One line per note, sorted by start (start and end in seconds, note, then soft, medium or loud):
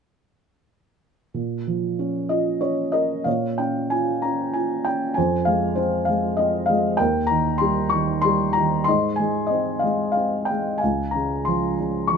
1.34 3.22 A#2 soft
1.67 2.89 F3 soft
1.99 2.60 C#4 soft
2.29 3.23 F4 soft
2.29 2.59 D#5 medium
2.61 3.24 C#4 soft
2.61 2.94 C#5 medium
2.92 3.25 A#4 soft
2.92 3.26 D#5 medium
3.24 5.13 A#2 soft
3.24 4.20 C#5 soft
3.24 3.59 F5 medium
3.58 4.23 C#4 soft
3.58 3.92 G5 medium
3.90 4.54 F4 soft
3.90 4.24 G#5 medium
4.22 4.85 C#4 soft
4.22 4.56 A#5 medium
4.53 5.15 F4 soft
4.53 4.87 G#5 medium
4.85 5.16 C#4 soft
4.85 5.17 G5 medium
5.14 6.96 F2 soft
5.14 5.74 C5 soft
5.14 5.47 G#5 medium
5.45 6.07 G#3 soft
5.45 5.78 F5 medium
5.75 6.37 C4 soft
5.75 6.08 C5 medium
6.05 6.68 G#3 soft
6.05 6.38 F5 medium
6.37 6.97 C4 soft
6.37 6.69 D#5 medium
6.66 6.99 G#3 soft
6.66 6.99 F5 medium
6.97 8.83 D#2 medium
6.97 7.89 A#4 medium
6.97 7.26 G5 medium
7.27 7.91 D#3 soft
7.27 7.60 A#5 medium
7.58 8.23 G3 soft
7.58 7.92 C6 medium
7.90 8.56 D#3 soft
7.90 8.24 C#6 medium
8.21 8.85 G3 soft
8.21 8.55 C6 medium
8.53 8.86 A#5 medium
8.57 8.87 D#3 soft
8.84 10.78 G#2 medium
8.84 9.18 C6 medium
8.88 9.45 D#5 medium
9.16 9.82 G#3 soft
9.16 9.49 G#5 medium
9.47 9.81 D#5 medium
9.51 10.15 C4 soft
9.79 10.10 F5 medium
9.84 10.49 G#3 soft
10.12 10.48 F5 medium
10.17 10.81 C4 soft
10.45 10.81 G5 medium
10.50 10.81 G#3 soft
10.78 11.75 F5 soft
10.78 11.13 G#5 medium
10.83 12.17 C#2 soft
11.11 11.78 C#3 soft
11.11 11.46 A#5 medium
11.45 12.10 F3 soft
11.45 12.12 C6 medium
11.80 12.17 C#3 soft
12.07 12.17 C#6 medium
12.12 12.17 F3 soft